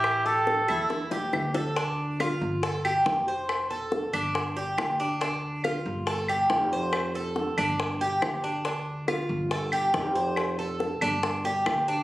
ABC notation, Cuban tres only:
X:1
M:4/4
L:1/8
Q:1/4=140
K:Dm
V:1 name="Cuban tres"
E G2 E2 G2 A | D2 F2 A G2 c- | c A2 D2 G2 D | D2 F2 A G2 c- |
c A2 D2 G2 D | D2 F2 A G2 c- | c A2 D2 G2 D |]